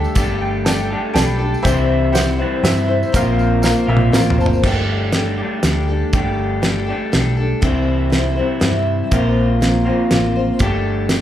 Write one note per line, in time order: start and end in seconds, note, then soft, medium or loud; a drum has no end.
0.00 0.15 G3 medium
0.00 0.16 A3 medium
0.00 0.14 D4 soft
0.00 0.15 D4 medium
0.00 0.15 G4 soft
0.00 0.20 G4 medium
0.00 0.15 A4 soft
0.00 0.29 A4 medium
0.00 0.30 D5 medium
0.00 0.29 E5 medium
0.04 tambourine soft
0.15 0.94 G1 loud
0.15 0.65 G3 medium
0.15 0.90 A3 loud
0.15 0.66 D4 medium
0.15 0.67 G4 medium
0.15 0.66 A4 loud
0.15 kick loud
0.15 closed hi-hat medium
0.15 tambourine medium
0.42 0.64 G5 medium
0.65 1.12 G3 medium
0.65 1.14 D4 medium
0.65 1.15 G4 medium
0.65 0.97 A4 medium
0.65 1.16 A4 medium
0.65 0.97 D5 medium
0.65 0.97 G5 medium
0.65 snare medium
0.65 closed hi-hat medium
0.65 tambourine medium
0.91 1.66 G3 medium
0.91 1.65 A3 medium
0.91 1.65 D4 medium
0.91 1.64 G4 medium
1.13 1.54 B1 medium
1.13 1.39 G3 medium
1.13 1.40 D4 medium
1.13 1.39 G4 medium
1.13 1.64 A4 medium
1.13 1.65 D5 medium
1.13 1.64 G5 medium
1.13 1.27 A5 medium
1.13 snare medium
1.13 closed hi-hat medium
1.13 tambourine medium
1.17 1.37 A4 medium
1.25 1.61 B5 medium
1.39 1.64 D4 soft
1.39 1.64 G4 soft
1.39 1.64 A4 medium
1.54 tambourine soft
1.62 2.43 C2 loud
1.62 2.14 C3 medium
1.62 2.14 E3 medium
1.62 2.12 G3 medium
1.62 2.14 C4 medium
1.62 2.15 E4 medium
1.62 2.04 G4 medium
1.62 2.04 C5 medium
1.62 2.17 C5 loud
1.62 2.04 E5 medium
1.62 kick loud
1.62 closed hi-hat medium
1.67 2.38 E4 loud
1.67 tambourine loud
2.12 2.39 G3 medium
2.12 2.40 C4 medium
2.12 2.38 E4 medium
2.12 2.45 G4 medium
2.12 2.46 C5 medium
2.12 2.46 F#5 medium
2.12 snare medium
2.12 closed hi-hat medium
2.12 tambourine medium
2.17 2.37 C5 medium
2.38 3.14 E3 medium
2.38 2.62 G3 soft
2.38 2.63 C4 soft
2.38 2.64 E4 medium
2.38 2.64 C5 soft
2.43 3.14 C3 medium
2.63 3.03 G2 medium
2.63 2.89 G3 medium
2.63 2.89 C4 medium
2.63 2.89 E4 medium
2.63 3.14 G4 medium
2.63 3.13 C5 medium
2.63 2.87 C5 medium
2.63 3.14 E5 medium
2.63 snare medium
2.63 closed hi-hat medium
2.63 tambourine loud
2.88 3.12 G3 soft
2.88 3.12 C4 soft
2.88 3.13 E4 medium
2.88 3.14 C5 medium
3.03 tambourine soft
3.12 3.73 A#1 loud
3.12 3.88 A#2 medium
3.12 3.88 F3 loud
3.12 3.61 A#3 medium
3.12 3.62 C4 medium
3.12 3.64 F4 loud
3.12 3.55 A#4 medium
3.12 3.54 C5 medium
3.12 3.64 C5 medium
3.12 3.55 F5 loud
3.12 kick loud
3.12 closed hi-hat medium
3.12 tambourine loud
3.39 tambourine soft
3.62 4.11 A#3 medium
3.62 4.13 C4 medium
3.62 4.13 F4 medium
3.62 3.96 A#4 medium
3.62 3.95 C5 medium
3.62 4.15 C5 medium
3.62 3.95 F5 medium
3.62 snare medium
3.62 tambourine loud
3.87 4.11 A#1 medium
3.87 4.63 A#2 medium
3.87 4.63 F3 medium
3.87 4.63 A#3 medium
3.87 4.62 C4 medium
3.87 4.61 F4 medium
3.87 4.12 E5 medium
3.97 mid tom medium
4.12 4.36 A1 medium
4.12 4.38 A#3 medium
4.12 4.39 C4 medium
4.12 4.39 F4 medium
4.12 4.64 A#4 medium
4.12 4.65 C5 medium
4.12 4.36 C5 medium
4.12 4.38 F5 medium
4.12 snare medium
4.12 tambourine loud
4.30 floor tom medium
4.38 4.61 G1 medium
4.38 4.65 F4 soft
4.38 4.63 C5 medium
4.38 4.63 A5 medium
4.38 tambourine soft
4.42 4.65 C4 soft
4.46 floor tom medium
4.53 tambourine soft
4.63 5.41 G1 medium
4.63 5.13 G3 medium
4.63 5.40 A3 medium
4.63 5.13 D4 medium
4.63 5.15 G4 medium
4.63 5.15 A4 medium
4.63 kick loud
4.63 crash medium
5.13 5.63 G3 medium
5.13 5.64 D4 medium
5.13 5.65 G4 medium
5.13 snare medium
5.13 closed hi-hat medium
5.17 5.65 A4 medium
5.38 6.13 A3 medium
5.38 6.13 D4 medium
5.38 6.17 G4 medium
5.42 6.13 G3 medium
5.63 6.03 D2 medium
5.63 5.89 G3 medium
5.63 5.89 D4 medium
5.63 5.88 G4 medium
5.63 5.86 A4 medium
5.63 snare medium
5.63 closed hi-hat medium
5.88 6.12 D4 soft
5.88 6.13 G4 soft
5.88 6.13 A4 soft
6.13 6.91 G1 loud
6.13 6.61 G3 medium
6.13 6.88 A3 medium
6.13 6.62 D4 medium
6.13 6.64 G4 medium
6.13 6.64 A4 medium
6.13 kick loud
6.13 closed hi-hat medium
6.62 6.88 G3 medium
6.62 6.88 D4 medium
6.62 6.88 G4 medium
6.62 6.85 A4 medium
6.62 snare medium
6.62 closed hi-hat medium
6.87 7.11 D4 soft
6.87 7.13 G4 soft
6.87 7.12 A4 soft
6.91 7.63 G3 medium
6.91 7.63 A3 medium
7.12 7.53 B1 medium
7.12 7.37 G3 medium
7.12 7.38 D4 medium
7.12 7.37 G4 medium
7.12 7.36 A4 medium
7.12 snare medium
7.12 closed hi-hat medium
7.37 7.63 D4 soft
7.37 7.62 G4 soft
7.37 7.62 A4 medium
7.61 8.41 C2 medium
7.61 8.12 C3 medium
7.61 8.12 E3 medium
7.61 8.09 G3 medium
7.61 8.11 C4 medium
7.61 8.11 E4 medium
7.61 8.14 C5 medium
7.61 kick loud
7.61 closed hi-hat medium
8.10 8.36 G3 medium
8.10 8.37 C4 medium
8.10 8.36 E4 medium
8.10 snare medium
8.10 closed hi-hat medium
8.14 8.34 C5 medium
8.36 8.58 G3 soft
8.36 8.60 C4 soft
8.36 8.62 E4 soft
8.36 8.61 C5 soft
8.41 9.11 C3 medium
8.41 9.11 E3 medium
8.60 9.01 G2 medium
8.60 9.11 G3 medium
8.60 9.11 C4 medium
8.60 9.12 E4 medium
8.60 9.12 C5 medium
8.60 snare medium
8.60 closed hi-hat medium
9.11 9.90 A#1 loud
9.11 9.84 A#2 medium
9.11 9.85 F3 medium
9.11 9.59 A#3 medium
9.11 9.61 C4 medium
9.11 9.62 F4 medium
9.11 9.62 C5 medium
9.11 kick medium
9.11 closed hi-hat medium
9.61 9.86 A#3 medium
9.61 9.86 C4 medium
9.61 9.87 F4 medium
9.61 9.85 C5 medium
9.61 snare medium
9.61 closed hi-hat medium
9.86 10.60 A#2 medium
9.86 10.60 F3 medium
9.86 10.59 A#3 medium
9.86 10.11 C4 soft
9.86 10.12 F4 soft
9.86 10.11 C5 soft
10.11 10.50 A1 medium
10.11 10.36 A#3 medium
10.11 10.36 C4 medium
10.11 10.37 F4 medium
10.11 10.35 C5 medium
10.11 snare medium
10.11 closed hi-hat medium
10.36 10.60 C4 soft
10.36 10.60 F4 soft
10.36 10.61 C5 soft
10.59 11.21 G1 medium
10.59 11.09 G3 medium
10.59 11.21 A3 medium
10.59 11.09 D4 medium
10.59 11.11 G4 medium
10.59 11.11 A4 medium
10.59 kick loud
10.59 closed hi-hat medium
11.09 11.21 G3 medium
11.09 11.21 D4 medium
11.09 11.21 G4 medium
11.09 11.21 A4 medium
11.09 snare medium
11.09 closed hi-hat medium